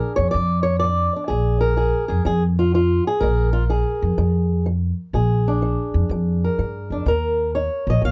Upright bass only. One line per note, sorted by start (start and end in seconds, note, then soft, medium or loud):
0.18 0.30 F2 medium
0.34 1.06 F2 medium
1.30 1.91 A#1 medium
2.09 2.22 F2 medium
2.25 2.98 F2 medium
3.21 3.82 A#1 medium
4.02 4.14 F2 medium
4.18 4.90 F2 medium
5.13 5.74 A#1 medium
5.94 6.06 F2 medium
6.09 6.46 F2 medium
6.58 6.88 G2 medium
6.90 7.05 F2 medium
7.06 7.67 D#2 medium
7.87 7.99 A#1 medium
8.02 8.12 A#1 medium